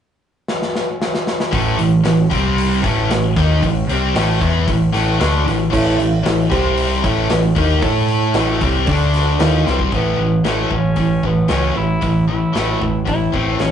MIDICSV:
0, 0, Header, 1, 7, 480
1, 0, Start_track
1, 0, Tempo, 524476
1, 1398, Time_signature, 4, 2, 24, 8
1, 12551, End_track
2, 0, Start_track
2, 0, Title_t, "Reed electric piano"
2, 0, Program_c, 0, 4
2, 5239, Note_on_c, 0, 73, 123
2, 5241, Note_on_c, 0, 64, 111
2, 5244, Note_on_c, 0, 69, 100
2, 5624, Note_off_c, 0, 73, 0
2, 5625, Note_off_c, 0, 64, 0
2, 5626, Note_off_c, 0, 69, 0
2, 5725, Note_on_c, 0, 69, 71
2, 5726, Note_on_c, 0, 73, 87
2, 5728, Note_on_c, 0, 64, 76
2, 5954, Note_on_c, 0, 60, 89
2, 5960, Note_on_c, 0, 67, 79
2, 5963, Note_off_c, 0, 69, 0
2, 5963, Note_off_c, 0, 73, 0
2, 5964, Note_off_c, 0, 64, 0
2, 5965, Note_on_c, 0, 72, 93
2, 6341, Note_off_c, 0, 60, 0
2, 6344, Note_off_c, 0, 67, 0
2, 6346, Note_off_c, 0, 72, 0
2, 6447, Note_on_c, 0, 73, 92
2, 6451, Note_on_c, 0, 69, 85
2, 6452, Note_on_c, 0, 64, 89
2, 7019, Note_off_c, 0, 73, 0
2, 7021, Note_off_c, 0, 64, 0
2, 7021, Note_off_c, 0, 69, 0
2, 7156, Note_on_c, 0, 69, 103
2, 7159, Note_on_c, 0, 64, 101
2, 7162, Note_on_c, 0, 73, 116
2, 7541, Note_off_c, 0, 69, 0
2, 7543, Note_off_c, 0, 64, 0
2, 7544, Note_off_c, 0, 73, 0
2, 7635, Note_on_c, 0, 64, 81
2, 7639, Note_on_c, 0, 73, 87
2, 7641, Note_on_c, 0, 69, 71
2, 8020, Note_off_c, 0, 64, 0
2, 8023, Note_off_c, 0, 69, 0
2, 8023, Note_off_c, 0, 73, 0
2, 8107, Note_on_c, 0, 69, 66
2, 8107, Note_on_c, 0, 74, 86
2, 8114, Note_on_c, 0, 62, 74
2, 8496, Note_off_c, 0, 74, 0
2, 8497, Note_off_c, 0, 69, 0
2, 8500, Note_off_c, 0, 62, 0
2, 8591, Note_on_c, 0, 69, 71
2, 8593, Note_on_c, 0, 73, 83
2, 8595, Note_on_c, 0, 64, 79
2, 8978, Note_off_c, 0, 69, 0
2, 8979, Note_off_c, 0, 73, 0
2, 8980, Note_off_c, 0, 64, 0
2, 12551, End_track
3, 0, Start_track
3, 0, Title_t, "Electric slide guitar"
3, 0, Program_c, 1, 29
3, 11976, Note_on_c, 1, 64, 78
3, 12199, Note_off_c, 1, 64, 0
3, 12217, Note_on_c, 1, 60, 69
3, 12439, Note_off_c, 1, 60, 0
3, 12450, Note_on_c, 1, 61, 74
3, 12551, Note_off_c, 1, 61, 0
3, 12551, End_track
4, 0, Start_track
4, 0, Title_t, "Tenor saxophone"
4, 0, Program_c, 2, 66
4, 9111, Note_on_c, 2, 59, 84
4, 9542, Note_off_c, 2, 59, 0
4, 9587, Note_on_c, 2, 57, 72
4, 9822, Note_on_c, 2, 61, 83
4, 9836, Note_off_c, 2, 57, 0
4, 10303, Note_on_c, 2, 59, 79
4, 10317, Note_off_c, 2, 61, 0
4, 10517, Note_off_c, 2, 59, 0
4, 10523, Note_on_c, 2, 61, 90
4, 10743, Note_off_c, 2, 61, 0
4, 10771, Note_on_c, 2, 64, 91
4, 11211, Note_off_c, 2, 64, 0
4, 11231, Note_on_c, 2, 64, 79
4, 11917, Note_off_c, 2, 64, 0
4, 12551, End_track
5, 0, Start_track
5, 0, Title_t, "Distorted electric guitar"
5, 0, Program_c, 3, 30
5, 1387, Note_on_c, 3, 52, 103
5, 1389, Note_on_c, 3, 45, 97
5, 1399, Note_on_c, 3, 57, 96
5, 1608, Note_off_c, 3, 45, 0
5, 1619, Note_on_c, 3, 45, 58
5, 1625, Note_off_c, 3, 52, 0
5, 1632, Note_off_c, 3, 57, 0
5, 1635, Note_on_c, 3, 52, 71
5, 1821, Note_off_c, 3, 45, 0
5, 1829, Note_off_c, 3, 52, 0
5, 1864, Note_on_c, 3, 45, 61
5, 1872, Note_on_c, 3, 52, 63
5, 2063, Note_off_c, 3, 45, 0
5, 2067, Note_off_c, 3, 52, 0
5, 2103, Note_on_c, 3, 48, 83
5, 2105, Note_on_c, 3, 55, 88
5, 2113, Note_on_c, 3, 60, 99
5, 2581, Note_off_c, 3, 48, 0
5, 2585, Note_off_c, 3, 55, 0
5, 2585, Note_on_c, 3, 45, 76
5, 2586, Note_off_c, 3, 60, 0
5, 2589, Note_on_c, 3, 57, 84
5, 2590, Note_on_c, 3, 52, 97
5, 2825, Note_off_c, 3, 45, 0
5, 2827, Note_off_c, 3, 57, 0
5, 2828, Note_off_c, 3, 52, 0
5, 2840, Note_on_c, 3, 52, 66
5, 2841, Note_on_c, 3, 45, 53
5, 3032, Note_off_c, 3, 45, 0
5, 3032, Note_off_c, 3, 52, 0
5, 3086, Note_on_c, 3, 58, 96
5, 3092, Note_on_c, 3, 51, 94
5, 3093, Note_on_c, 3, 63, 103
5, 3316, Note_off_c, 3, 58, 0
5, 3319, Note_off_c, 3, 51, 0
5, 3319, Note_off_c, 3, 63, 0
5, 3323, Note_on_c, 3, 45, 64
5, 3324, Note_on_c, 3, 52, 75
5, 3514, Note_off_c, 3, 45, 0
5, 3514, Note_off_c, 3, 52, 0
5, 3567, Note_on_c, 3, 48, 93
5, 3571, Note_on_c, 3, 60, 96
5, 3575, Note_on_c, 3, 55, 89
5, 3797, Note_off_c, 3, 48, 0
5, 3799, Note_off_c, 3, 60, 0
5, 3801, Note_off_c, 3, 55, 0
5, 3803, Note_on_c, 3, 45, 81
5, 3807, Note_on_c, 3, 52, 78
5, 3815, Note_on_c, 3, 57, 98
5, 4030, Note_off_c, 3, 52, 0
5, 4035, Note_off_c, 3, 45, 0
5, 4040, Note_off_c, 3, 57, 0
5, 4041, Note_on_c, 3, 52, 91
5, 4043, Note_on_c, 3, 59, 104
5, 4055, Note_on_c, 3, 64, 98
5, 4268, Note_off_c, 3, 52, 0
5, 4275, Note_off_c, 3, 59, 0
5, 4279, Note_on_c, 3, 45, 62
5, 4279, Note_on_c, 3, 52, 73
5, 4281, Note_off_c, 3, 64, 0
5, 4472, Note_off_c, 3, 45, 0
5, 4472, Note_off_c, 3, 52, 0
5, 4508, Note_on_c, 3, 45, 86
5, 4512, Note_on_c, 3, 52, 89
5, 4518, Note_on_c, 3, 57, 90
5, 4738, Note_off_c, 3, 57, 0
5, 4744, Note_off_c, 3, 45, 0
5, 4745, Note_off_c, 3, 52, 0
5, 4748, Note_on_c, 3, 50, 87
5, 4749, Note_on_c, 3, 57, 97
5, 4753, Note_on_c, 3, 62, 100
5, 4986, Note_off_c, 3, 50, 0
5, 4987, Note_off_c, 3, 57, 0
5, 4990, Note_off_c, 3, 62, 0
5, 4990, Note_on_c, 3, 45, 65
5, 4998, Note_on_c, 3, 52, 71
5, 5187, Note_off_c, 3, 45, 0
5, 5192, Note_off_c, 3, 52, 0
5, 5218, Note_on_c, 3, 45, 102
5, 5226, Note_on_c, 3, 52, 102
5, 5226, Note_on_c, 3, 57, 102
5, 5451, Note_off_c, 3, 45, 0
5, 5453, Note_off_c, 3, 52, 0
5, 5462, Note_on_c, 3, 45, 60
5, 5464, Note_on_c, 3, 52, 65
5, 5466, Note_off_c, 3, 57, 0
5, 5663, Note_off_c, 3, 45, 0
5, 5664, Note_off_c, 3, 52, 0
5, 5704, Note_on_c, 3, 45, 62
5, 5707, Note_on_c, 3, 52, 65
5, 5904, Note_off_c, 3, 45, 0
5, 5906, Note_off_c, 3, 52, 0
5, 5945, Note_on_c, 3, 48, 85
5, 5945, Note_on_c, 3, 55, 85
5, 5953, Note_on_c, 3, 60, 96
5, 6425, Note_off_c, 3, 48, 0
5, 6425, Note_off_c, 3, 55, 0
5, 6429, Note_off_c, 3, 60, 0
5, 6438, Note_on_c, 3, 52, 102
5, 6439, Note_on_c, 3, 45, 87
5, 6441, Note_on_c, 3, 57, 92
5, 6669, Note_off_c, 3, 45, 0
5, 6672, Note_off_c, 3, 52, 0
5, 6673, Note_off_c, 3, 57, 0
5, 6680, Note_on_c, 3, 45, 59
5, 6687, Note_on_c, 3, 52, 66
5, 6872, Note_off_c, 3, 45, 0
5, 6875, Note_off_c, 3, 52, 0
5, 6910, Note_on_c, 3, 51, 89
5, 6921, Note_on_c, 3, 63, 96
5, 6923, Note_on_c, 3, 58, 89
5, 7147, Note_off_c, 3, 51, 0
5, 7153, Note_off_c, 3, 63, 0
5, 7154, Note_off_c, 3, 58, 0
5, 7170, Note_on_c, 3, 57, 94
5, 7174, Note_on_c, 3, 64, 101
5, 7183, Note_on_c, 3, 69, 104
5, 7637, Note_off_c, 3, 57, 0
5, 7639, Note_off_c, 3, 64, 0
5, 7643, Note_on_c, 3, 45, 86
5, 7644, Note_off_c, 3, 69, 0
5, 7645, Note_on_c, 3, 52, 87
5, 7651, Note_on_c, 3, 57, 87
5, 7874, Note_off_c, 3, 45, 0
5, 7874, Note_off_c, 3, 52, 0
5, 7878, Note_off_c, 3, 57, 0
5, 7883, Note_on_c, 3, 48, 91
5, 7883, Note_on_c, 3, 55, 99
5, 7888, Note_on_c, 3, 60, 105
5, 8113, Note_off_c, 3, 48, 0
5, 8114, Note_off_c, 3, 55, 0
5, 8116, Note_off_c, 3, 60, 0
5, 8134, Note_on_c, 3, 50, 83
5, 8134, Note_on_c, 3, 57, 86
5, 8140, Note_on_c, 3, 62, 90
5, 8597, Note_off_c, 3, 50, 0
5, 8599, Note_off_c, 3, 57, 0
5, 8601, Note_on_c, 3, 51, 92
5, 8602, Note_off_c, 3, 62, 0
5, 8605, Note_on_c, 3, 63, 89
5, 8606, Note_on_c, 3, 58, 91
5, 8832, Note_off_c, 3, 51, 0
5, 8834, Note_off_c, 3, 63, 0
5, 8835, Note_off_c, 3, 58, 0
5, 8839, Note_on_c, 3, 48, 85
5, 8842, Note_on_c, 3, 55, 92
5, 8848, Note_on_c, 3, 60, 98
5, 9071, Note_off_c, 3, 48, 0
5, 9073, Note_off_c, 3, 55, 0
5, 9075, Note_off_c, 3, 60, 0
5, 9096, Note_on_c, 3, 45, 80
5, 9096, Note_on_c, 3, 52, 82
5, 9101, Note_on_c, 3, 57, 80
5, 9312, Note_off_c, 3, 45, 0
5, 9312, Note_off_c, 3, 52, 0
5, 9315, Note_off_c, 3, 57, 0
5, 9339, Note_on_c, 3, 45, 58
5, 9340, Note_on_c, 3, 52, 63
5, 9544, Note_off_c, 3, 45, 0
5, 9545, Note_off_c, 3, 52, 0
5, 9559, Note_on_c, 3, 52, 84
5, 9560, Note_on_c, 3, 45, 70
5, 9568, Note_on_c, 3, 57, 85
5, 9783, Note_off_c, 3, 52, 0
5, 9784, Note_off_c, 3, 45, 0
5, 9788, Note_off_c, 3, 57, 0
5, 9801, Note_on_c, 3, 45, 60
5, 9805, Note_on_c, 3, 52, 72
5, 10015, Note_off_c, 3, 45, 0
5, 10017, Note_off_c, 3, 52, 0
5, 10032, Note_on_c, 3, 45, 70
5, 10040, Note_on_c, 3, 52, 71
5, 10251, Note_off_c, 3, 45, 0
5, 10254, Note_off_c, 3, 52, 0
5, 10282, Note_on_c, 3, 45, 57
5, 10287, Note_on_c, 3, 52, 65
5, 10496, Note_off_c, 3, 45, 0
5, 10498, Note_off_c, 3, 52, 0
5, 10509, Note_on_c, 3, 52, 81
5, 10510, Note_on_c, 3, 45, 75
5, 10518, Note_on_c, 3, 57, 83
5, 10738, Note_off_c, 3, 52, 0
5, 10739, Note_off_c, 3, 45, 0
5, 10743, Note_off_c, 3, 57, 0
5, 10751, Note_on_c, 3, 45, 63
5, 10758, Note_on_c, 3, 52, 66
5, 10970, Note_off_c, 3, 45, 0
5, 10973, Note_off_c, 3, 52, 0
5, 10993, Note_on_c, 3, 45, 66
5, 10996, Note_on_c, 3, 52, 75
5, 11211, Note_off_c, 3, 45, 0
5, 11212, Note_off_c, 3, 52, 0
5, 11237, Note_on_c, 3, 52, 62
5, 11242, Note_on_c, 3, 45, 55
5, 11453, Note_off_c, 3, 52, 0
5, 11455, Note_off_c, 3, 45, 0
5, 11468, Note_on_c, 3, 52, 78
5, 11475, Note_on_c, 3, 45, 65
5, 11475, Note_on_c, 3, 57, 75
5, 11698, Note_off_c, 3, 52, 0
5, 11701, Note_off_c, 3, 45, 0
5, 11701, Note_off_c, 3, 57, 0
5, 11710, Note_on_c, 3, 45, 60
5, 11712, Note_on_c, 3, 52, 73
5, 11929, Note_off_c, 3, 45, 0
5, 11930, Note_off_c, 3, 52, 0
5, 11947, Note_on_c, 3, 45, 61
5, 11951, Note_on_c, 3, 52, 77
5, 12168, Note_off_c, 3, 45, 0
5, 12170, Note_off_c, 3, 52, 0
5, 12193, Note_on_c, 3, 45, 76
5, 12199, Note_on_c, 3, 52, 81
5, 12199, Note_on_c, 3, 57, 88
5, 12420, Note_off_c, 3, 45, 0
5, 12423, Note_off_c, 3, 52, 0
5, 12423, Note_off_c, 3, 57, 0
5, 12446, Note_on_c, 3, 45, 63
5, 12449, Note_on_c, 3, 52, 65
5, 12551, Note_off_c, 3, 45, 0
5, 12551, Note_off_c, 3, 52, 0
5, 12551, End_track
6, 0, Start_track
6, 0, Title_t, "Picked electric bass"
6, 0, Program_c, 4, 34
6, 1395, Note_on_c, 4, 33, 89
6, 1620, Note_off_c, 4, 33, 0
6, 1635, Note_on_c, 4, 33, 74
6, 1860, Note_off_c, 4, 33, 0
6, 1877, Note_on_c, 4, 33, 69
6, 2101, Note_off_c, 4, 33, 0
6, 2116, Note_on_c, 4, 36, 95
6, 2564, Note_off_c, 4, 36, 0
6, 2600, Note_on_c, 4, 33, 92
6, 2823, Note_off_c, 4, 33, 0
6, 2832, Note_on_c, 4, 33, 83
6, 3059, Note_off_c, 4, 33, 0
6, 3080, Note_on_c, 4, 39, 95
6, 3303, Note_off_c, 4, 39, 0
6, 3322, Note_on_c, 4, 33, 80
6, 3544, Note_off_c, 4, 33, 0
6, 3556, Note_on_c, 4, 36, 88
6, 3782, Note_off_c, 4, 36, 0
6, 3796, Note_on_c, 4, 33, 86
6, 4021, Note_off_c, 4, 33, 0
6, 4042, Note_on_c, 4, 40, 87
6, 4265, Note_off_c, 4, 40, 0
6, 4284, Note_on_c, 4, 33, 73
6, 4506, Note_off_c, 4, 33, 0
6, 4519, Note_on_c, 4, 33, 91
6, 4743, Note_off_c, 4, 33, 0
6, 4760, Note_on_c, 4, 38, 104
6, 4984, Note_off_c, 4, 38, 0
6, 4996, Note_on_c, 4, 33, 82
6, 5221, Note_off_c, 4, 33, 0
6, 5247, Note_on_c, 4, 33, 98
6, 5467, Note_off_c, 4, 33, 0
6, 5479, Note_on_c, 4, 33, 71
6, 5703, Note_off_c, 4, 33, 0
6, 5718, Note_on_c, 4, 33, 75
6, 5942, Note_off_c, 4, 33, 0
6, 5966, Note_on_c, 4, 36, 88
6, 6409, Note_off_c, 4, 36, 0
6, 6446, Note_on_c, 4, 33, 89
6, 6666, Note_off_c, 4, 33, 0
6, 6678, Note_on_c, 4, 33, 83
6, 6902, Note_off_c, 4, 33, 0
6, 6924, Note_on_c, 4, 39, 100
6, 7145, Note_off_c, 4, 39, 0
6, 7162, Note_on_c, 4, 45, 93
6, 7607, Note_off_c, 4, 45, 0
6, 7631, Note_on_c, 4, 33, 90
6, 7858, Note_off_c, 4, 33, 0
6, 7888, Note_on_c, 4, 36, 89
6, 8107, Note_off_c, 4, 36, 0
6, 8122, Note_on_c, 4, 38, 88
6, 8566, Note_off_c, 4, 38, 0
6, 8599, Note_on_c, 4, 39, 96
6, 8821, Note_off_c, 4, 39, 0
6, 8843, Note_on_c, 4, 36, 90
6, 9063, Note_off_c, 4, 36, 0
6, 9083, Note_on_c, 4, 33, 81
6, 9262, Note_off_c, 4, 33, 0
6, 9317, Note_on_c, 4, 33, 77
6, 9498, Note_off_c, 4, 33, 0
6, 9547, Note_on_c, 4, 33, 71
6, 9732, Note_off_c, 4, 33, 0
6, 9803, Note_on_c, 4, 33, 72
6, 9982, Note_off_c, 4, 33, 0
6, 10041, Note_on_c, 4, 33, 74
6, 10221, Note_off_c, 4, 33, 0
6, 10280, Note_on_c, 4, 33, 78
6, 10460, Note_off_c, 4, 33, 0
6, 10523, Note_on_c, 4, 37, 83
6, 10702, Note_off_c, 4, 37, 0
6, 10768, Note_on_c, 4, 33, 77
6, 10945, Note_off_c, 4, 33, 0
6, 11004, Note_on_c, 4, 33, 77
6, 11364, Note_off_c, 4, 33, 0
6, 11488, Note_on_c, 4, 33, 72
6, 11665, Note_off_c, 4, 33, 0
6, 11725, Note_on_c, 4, 33, 79
6, 11903, Note_off_c, 4, 33, 0
6, 11969, Note_on_c, 4, 33, 76
6, 12145, Note_off_c, 4, 33, 0
6, 12209, Note_on_c, 4, 33, 81
6, 12386, Note_off_c, 4, 33, 0
6, 12444, Note_on_c, 4, 33, 87
6, 12551, Note_off_c, 4, 33, 0
6, 12551, End_track
7, 0, Start_track
7, 0, Title_t, "Drums"
7, 443, Note_on_c, 9, 38, 74
7, 535, Note_off_c, 9, 38, 0
7, 569, Note_on_c, 9, 38, 66
7, 660, Note_off_c, 9, 38, 0
7, 691, Note_on_c, 9, 38, 76
7, 782, Note_off_c, 9, 38, 0
7, 930, Note_on_c, 9, 38, 89
7, 1021, Note_off_c, 9, 38, 0
7, 1049, Note_on_c, 9, 38, 82
7, 1140, Note_off_c, 9, 38, 0
7, 1165, Note_on_c, 9, 38, 91
7, 1256, Note_off_c, 9, 38, 0
7, 1283, Note_on_c, 9, 38, 97
7, 1375, Note_off_c, 9, 38, 0
7, 1397, Note_on_c, 9, 36, 101
7, 1400, Note_on_c, 9, 46, 77
7, 1489, Note_off_c, 9, 36, 0
7, 1492, Note_off_c, 9, 46, 0
7, 1636, Note_on_c, 9, 46, 60
7, 1728, Note_off_c, 9, 46, 0
7, 1875, Note_on_c, 9, 46, 82
7, 1882, Note_on_c, 9, 38, 110
7, 1967, Note_off_c, 9, 46, 0
7, 1973, Note_off_c, 9, 38, 0
7, 2116, Note_on_c, 9, 46, 59
7, 2117, Note_on_c, 9, 36, 92
7, 2207, Note_off_c, 9, 46, 0
7, 2208, Note_off_c, 9, 36, 0
7, 2363, Note_on_c, 9, 46, 82
7, 2454, Note_off_c, 9, 46, 0
7, 2598, Note_on_c, 9, 36, 103
7, 2602, Note_on_c, 9, 46, 64
7, 2609, Note_on_c, 9, 38, 34
7, 2690, Note_off_c, 9, 36, 0
7, 2694, Note_off_c, 9, 46, 0
7, 2700, Note_off_c, 9, 38, 0
7, 2842, Note_on_c, 9, 46, 79
7, 2849, Note_on_c, 9, 38, 107
7, 2934, Note_off_c, 9, 46, 0
7, 2940, Note_off_c, 9, 38, 0
7, 3080, Note_on_c, 9, 36, 102
7, 3085, Note_on_c, 9, 46, 58
7, 3091, Note_on_c, 9, 38, 31
7, 3171, Note_off_c, 9, 36, 0
7, 3176, Note_off_c, 9, 46, 0
7, 3183, Note_off_c, 9, 38, 0
7, 3320, Note_on_c, 9, 36, 85
7, 3326, Note_on_c, 9, 46, 74
7, 3412, Note_off_c, 9, 36, 0
7, 3418, Note_off_c, 9, 46, 0
7, 3564, Note_on_c, 9, 46, 58
7, 3655, Note_off_c, 9, 46, 0
7, 3803, Note_on_c, 9, 46, 81
7, 3809, Note_on_c, 9, 38, 105
7, 3894, Note_off_c, 9, 46, 0
7, 3901, Note_off_c, 9, 38, 0
7, 4040, Note_on_c, 9, 36, 91
7, 4041, Note_on_c, 9, 46, 52
7, 4131, Note_off_c, 9, 36, 0
7, 4132, Note_off_c, 9, 46, 0
7, 4282, Note_on_c, 9, 36, 90
7, 4286, Note_on_c, 9, 46, 72
7, 4373, Note_off_c, 9, 36, 0
7, 4378, Note_off_c, 9, 46, 0
7, 4524, Note_on_c, 9, 46, 57
7, 4530, Note_on_c, 9, 38, 33
7, 4615, Note_off_c, 9, 46, 0
7, 4622, Note_off_c, 9, 38, 0
7, 4765, Note_on_c, 9, 46, 77
7, 4772, Note_on_c, 9, 38, 104
7, 4857, Note_off_c, 9, 46, 0
7, 4863, Note_off_c, 9, 38, 0
7, 5014, Note_on_c, 9, 46, 53
7, 5021, Note_on_c, 9, 38, 32
7, 5106, Note_off_c, 9, 46, 0
7, 5112, Note_off_c, 9, 38, 0
7, 5245, Note_on_c, 9, 36, 102
7, 5249, Note_on_c, 9, 49, 96
7, 5336, Note_off_c, 9, 36, 0
7, 5341, Note_off_c, 9, 49, 0
7, 5486, Note_on_c, 9, 46, 57
7, 5577, Note_off_c, 9, 46, 0
7, 5725, Note_on_c, 9, 46, 79
7, 5731, Note_on_c, 9, 38, 108
7, 5816, Note_off_c, 9, 46, 0
7, 5822, Note_off_c, 9, 38, 0
7, 5964, Note_on_c, 9, 36, 98
7, 5967, Note_on_c, 9, 46, 55
7, 6055, Note_off_c, 9, 36, 0
7, 6058, Note_off_c, 9, 46, 0
7, 6200, Note_on_c, 9, 46, 79
7, 6292, Note_off_c, 9, 46, 0
7, 6444, Note_on_c, 9, 36, 99
7, 6444, Note_on_c, 9, 46, 58
7, 6450, Note_on_c, 9, 38, 32
7, 6535, Note_off_c, 9, 36, 0
7, 6535, Note_off_c, 9, 46, 0
7, 6542, Note_off_c, 9, 38, 0
7, 6679, Note_on_c, 9, 46, 87
7, 6685, Note_on_c, 9, 38, 110
7, 6770, Note_off_c, 9, 46, 0
7, 6777, Note_off_c, 9, 38, 0
7, 6921, Note_on_c, 9, 46, 60
7, 6923, Note_on_c, 9, 36, 107
7, 7012, Note_off_c, 9, 46, 0
7, 7014, Note_off_c, 9, 36, 0
7, 7159, Note_on_c, 9, 46, 80
7, 7162, Note_on_c, 9, 36, 101
7, 7250, Note_off_c, 9, 46, 0
7, 7254, Note_off_c, 9, 36, 0
7, 7398, Note_on_c, 9, 46, 57
7, 7490, Note_off_c, 9, 46, 0
7, 7635, Note_on_c, 9, 46, 80
7, 7641, Note_on_c, 9, 38, 105
7, 7726, Note_off_c, 9, 46, 0
7, 7733, Note_off_c, 9, 38, 0
7, 7883, Note_on_c, 9, 36, 100
7, 7883, Note_on_c, 9, 46, 54
7, 7974, Note_off_c, 9, 36, 0
7, 7974, Note_off_c, 9, 46, 0
7, 8118, Note_on_c, 9, 46, 81
7, 8121, Note_on_c, 9, 36, 99
7, 8210, Note_off_c, 9, 46, 0
7, 8212, Note_off_c, 9, 36, 0
7, 8362, Note_on_c, 9, 46, 54
7, 8368, Note_on_c, 9, 38, 33
7, 8453, Note_off_c, 9, 46, 0
7, 8460, Note_off_c, 9, 38, 0
7, 8601, Note_on_c, 9, 46, 75
7, 8608, Note_on_c, 9, 38, 106
7, 8693, Note_off_c, 9, 46, 0
7, 8699, Note_off_c, 9, 38, 0
7, 8850, Note_on_c, 9, 38, 64
7, 8941, Note_off_c, 9, 38, 0
7, 8961, Note_on_c, 9, 36, 80
7, 9052, Note_off_c, 9, 36, 0
7, 9080, Note_on_c, 9, 46, 43
7, 9081, Note_on_c, 9, 36, 93
7, 9171, Note_off_c, 9, 46, 0
7, 9173, Note_off_c, 9, 36, 0
7, 9559, Note_on_c, 9, 46, 46
7, 9565, Note_on_c, 9, 38, 101
7, 9650, Note_off_c, 9, 46, 0
7, 9657, Note_off_c, 9, 38, 0
7, 9797, Note_on_c, 9, 36, 71
7, 9889, Note_off_c, 9, 36, 0
7, 10029, Note_on_c, 9, 46, 48
7, 10039, Note_on_c, 9, 36, 71
7, 10121, Note_off_c, 9, 46, 0
7, 10130, Note_off_c, 9, 36, 0
7, 10280, Note_on_c, 9, 36, 72
7, 10372, Note_off_c, 9, 36, 0
7, 10510, Note_on_c, 9, 46, 50
7, 10516, Note_on_c, 9, 38, 99
7, 10601, Note_off_c, 9, 46, 0
7, 10608, Note_off_c, 9, 38, 0
7, 10999, Note_on_c, 9, 46, 46
7, 11004, Note_on_c, 9, 36, 87
7, 11091, Note_off_c, 9, 46, 0
7, 11096, Note_off_c, 9, 36, 0
7, 11486, Note_on_c, 9, 46, 43
7, 11493, Note_on_c, 9, 38, 100
7, 11578, Note_off_c, 9, 46, 0
7, 11584, Note_off_c, 9, 38, 0
7, 11729, Note_on_c, 9, 36, 73
7, 11820, Note_off_c, 9, 36, 0
7, 11963, Note_on_c, 9, 46, 46
7, 11967, Note_on_c, 9, 36, 77
7, 12054, Note_off_c, 9, 46, 0
7, 12058, Note_off_c, 9, 36, 0
7, 12206, Note_on_c, 9, 36, 75
7, 12297, Note_off_c, 9, 36, 0
7, 12442, Note_on_c, 9, 46, 44
7, 12448, Note_on_c, 9, 38, 98
7, 12533, Note_off_c, 9, 46, 0
7, 12540, Note_off_c, 9, 38, 0
7, 12551, End_track
0, 0, End_of_file